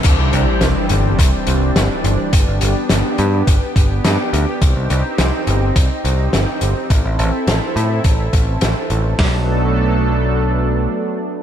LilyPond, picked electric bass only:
\new Staff \with { instrumentName = "Picked electric bass" } { \clef bass \time 4/4 \key c \lydian \tempo 4 = 105 c,16 c,16 c,16 r16 c,16 r16 g,,8 c,16 r16 c,8 g,,16 r16 g,,16 r16 | g,,16 g,,16 g,,16 r16 g,,16 r16 g,8 g,,16 r16 g,,8 g,16 r16 d,16 r16 | c,16 c,16 c,16 r16 c,16 r16 g,,8 c,16 r16 c,8 g,,16 r16 g,,16 r16 | a,,16 a,,16 a,,16 r16 a,,16 r16 a,8 a,,8 a,,8 a,,16 r16 a,,8 |
b,,2. r4 | }